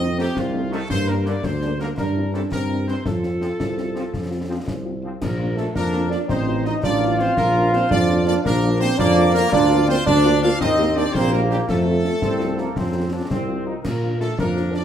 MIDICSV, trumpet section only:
0, 0, Header, 1, 2, 480
1, 0, Start_track
1, 0, Key_signature, -2, "major"
1, 0, Tempo, 359497
1, 1203, Time_signature, 6, 3, 24, 8
1, 19821, End_track
2, 0, Start_track
2, 0, Title_t, "Trumpet section"
2, 0, Program_c, 0, 61
2, 0, Note_on_c, 0, 75, 124
2, 206, Note_off_c, 0, 75, 0
2, 253, Note_on_c, 0, 67, 113
2, 472, Note_off_c, 0, 67, 0
2, 494, Note_on_c, 0, 65, 104
2, 969, Note_off_c, 0, 65, 0
2, 969, Note_on_c, 0, 69, 114
2, 1203, Note_on_c, 0, 72, 120
2, 1206, Note_off_c, 0, 69, 0
2, 1426, Note_off_c, 0, 72, 0
2, 1447, Note_on_c, 0, 70, 97
2, 1685, Note_off_c, 0, 70, 0
2, 1686, Note_on_c, 0, 74, 106
2, 1922, Note_on_c, 0, 72, 112
2, 1924, Note_off_c, 0, 74, 0
2, 2402, Note_off_c, 0, 72, 0
2, 2405, Note_on_c, 0, 70, 109
2, 2513, Note_off_c, 0, 70, 0
2, 2645, Note_on_c, 0, 70, 96
2, 3090, Note_off_c, 0, 70, 0
2, 3119, Note_on_c, 0, 69, 92
2, 3228, Note_off_c, 0, 69, 0
2, 3357, Note_on_c, 0, 70, 107
2, 3805, Note_off_c, 0, 70, 0
2, 3839, Note_on_c, 0, 72, 98
2, 4064, Note_off_c, 0, 72, 0
2, 4073, Note_on_c, 0, 69, 98
2, 6663, Note_off_c, 0, 69, 0
2, 6958, Note_on_c, 0, 70, 99
2, 7405, Note_off_c, 0, 70, 0
2, 7439, Note_on_c, 0, 69, 93
2, 7547, Note_off_c, 0, 69, 0
2, 7680, Note_on_c, 0, 70, 114
2, 8126, Note_off_c, 0, 70, 0
2, 8155, Note_on_c, 0, 74, 101
2, 8264, Note_off_c, 0, 74, 0
2, 8400, Note_on_c, 0, 72, 105
2, 8846, Note_off_c, 0, 72, 0
2, 8882, Note_on_c, 0, 75, 103
2, 8989, Note_off_c, 0, 75, 0
2, 9118, Note_on_c, 0, 74, 116
2, 9565, Note_off_c, 0, 74, 0
2, 9600, Note_on_c, 0, 72, 104
2, 9839, Note_off_c, 0, 72, 0
2, 9839, Note_on_c, 0, 70, 107
2, 10285, Note_off_c, 0, 70, 0
2, 10317, Note_on_c, 0, 72, 108
2, 10558, Note_off_c, 0, 72, 0
2, 10563, Note_on_c, 0, 74, 120
2, 11007, Note_off_c, 0, 74, 0
2, 11036, Note_on_c, 0, 74, 123
2, 11144, Note_off_c, 0, 74, 0
2, 11286, Note_on_c, 0, 70, 116
2, 11729, Note_off_c, 0, 70, 0
2, 11749, Note_on_c, 0, 72, 127
2, 11976, Note_off_c, 0, 72, 0
2, 12001, Note_on_c, 0, 74, 127
2, 12446, Note_off_c, 0, 74, 0
2, 12469, Note_on_c, 0, 70, 127
2, 12697, Note_off_c, 0, 70, 0
2, 12713, Note_on_c, 0, 74, 124
2, 13161, Note_off_c, 0, 74, 0
2, 13200, Note_on_c, 0, 72, 127
2, 13422, Note_off_c, 0, 72, 0
2, 13431, Note_on_c, 0, 74, 127
2, 13881, Note_off_c, 0, 74, 0
2, 13917, Note_on_c, 0, 77, 127
2, 14141, Note_off_c, 0, 77, 0
2, 14159, Note_on_c, 0, 75, 122
2, 14605, Note_off_c, 0, 75, 0
2, 14636, Note_on_c, 0, 74, 127
2, 14867, Note_on_c, 0, 72, 127
2, 14877, Note_off_c, 0, 74, 0
2, 15113, Note_off_c, 0, 72, 0
2, 15126, Note_on_c, 0, 70, 102
2, 15232, Note_off_c, 0, 70, 0
2, 15360, Note_on_c, 0, 67, 102
2, 15468, Note_off_c, 0, 67, 0
2, 15607, Note_on_c, 0, 69, 120
2, 17711, Note_off_c, 0, 69, 0
2, 18482, Note_on_c, 0, 70, 99
2, 18928, Note_off_c, 0, 70, 0
2, 18965, Note_on_c, 0, 69, 98
2, 19187, Note_off_c, 0, 69, 0
2, 19213, Note_on_c, 0, 70, 106
2, 19654, Note_off_c, 0, 70, 0
2, 19693, Note_on_c, 0, 74, 106
2, 19799, Note_off_c, 0, 74, 0
2, 19821, End_track
0, 0, End_of_file